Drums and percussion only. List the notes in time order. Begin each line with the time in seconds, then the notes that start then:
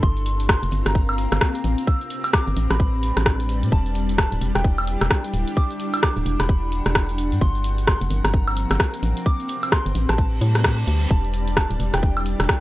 0.03 kick, shaker
0.17 closed hi-hat, shaker
0.26 closed hi-hat, shaker
0.40 closed hi-hat, shaker
0.49 kick, cross-stick, shaker
0.62 closed hi-hat, shaker
0.71 closed hi-hat, shaker
0.86 cross-stick, closed hi-hat, shaker
0.95 kick, shaker
1.09 high woodblock, shaker
1.18 closed hi-hat, shaker
1.32 cross-stick, closed hi-hat, high woodblock, shaker
1.41 kick, cross-stick, shaker
1.55 closed hi-hat, shaker
1.64 closed hi-hat, shaker
1.78 closed hi-hat, shaker
1.87 kick, shaker
2.01 closed hi-hat, shaker
2.10 closed hi-hat, shaker
2.24 closed hi-hat, high woodblock, shaker
2.33 kick, cross-stick, shaker
2.47 closed hi-hat, shaker
2.57 closed hi-hat, shaker
2.70 cross-stick, closed hi-hat, shaker
2.80 kick, shaker
2.93 shaker
3.03 closed hi-hat, shaker
3.17 cross-stick, closed hi-hat, shaker
3.26 kick, cross-stick, shaker
3.39 closed hi-hat, shaker
3.49 closed hi-hat, shaker
3.63 closed hi-hat, shaker
3.72 kick, shaker
3.86 closed hi-hat, shaker
3.95 closed hi-hat, shaker
4.09 closed hi-hat, shaker
4.18 kick, cross-stick, shaker
4.32 closed hi-hat, shaker
4.41 closed hi-hat, shaker
4.55 cross-stick, closed hi-hat, shaker
4.64 kick, shaker
4.78 high woodblock, shaker
4.87 closed hi-hat, shaker
5.01 cross-stick, closed hi-hat, high woodblock, shaker
5.11 kick, cross-stick, shaker
5.24 closed hi-hat, shaker
5.34 closed hi-hat, shaker
5.47 closed hi-hat, shaker
5.57 kick, shaker
5.71 closed hi-hat, shaker
5.80 closed hi-hat, shaker
5.94 closed hi-hat, high woodblock, shaker
6.03 kick, cross-stick, shaker
6.17 closed hi-hat, shaker
6.26 closed hi-hat, shaker
6.40 cross-stick, closed hi-hat, shaker
6.49 kick, shaker
6.63 shaker
6.72 closed hi-hat, shaker
6.86 cross-stick, closed hi-hat, shaker
6.95 kick, cross-stick, shaker
7.09 closed hi-hat, shaker
7.18 closed hi-hat, shaker
7.32 closed hi-hat, shaker
7.41 kick, shaker
7.55 closed hi-hat, shaker
7.64 closed hi-hat, shaker
7.78 closed hi-hat, shaker
7.87 kick, cross-stick, shaker
8.01 closed hi-hat, shaker
8.11 closed hi-hat, shaker
8.25 cross-stick, closed hi-hat, shaker
8.33 kick, shaker
8.47 high woodblock, shaker
8.57 closed hi-hat, shaker
8.71 cross-stick, closed hi-hat, high woodblock, shaker
8.80 kick, cross-stick, shaker
8.93 closed hi-hat, shaker
9.03 closed hi-hat, shaker
9.17 closed hi-hat, shaker
9.26 kick, shaker
9.40 closed hi-hat, shaker
9.49 closed hi-hat, shaker
9.63 closed hi-hat, high woodblock, shaker
9.72 kick, cross-stick, shaker
9.86 closed hi-hat, shaker
9.95 closed hi-hat, shaker
10.09 cross-stick, closed hi-hat, shaker
10.18 kick, shaker
10.32 shaker
10.41 closed hi-hat, shaker
10.55 cross-stick, closed hi-hat, shaker
10.64 kick, cross-stick, shaker
10.78 closed hi-hat, shaker
10.87 closed hi-hat, shaker
11.01 closed hi-hat, shaker
11.10 kick, shaker
11.24 closed hi-hat, shaker
11.34 closed hi-hat, shaker
11.48 closed hi-hat, shaker
11.57 kick, cross-stick, shaker
11.71 closed hi-hat, shaker
11.80 closed hi-hat, shaker
11.94 cross-stick, closed hi-hat, shaker
12.03 kick, shaker
12.17 high woodblock, shaker
12.26 closed hi-hat, shaker
12.40 cross-stick, closed hi-hat, high woodblock, shaker
12.49 kick, cross-stick, shaker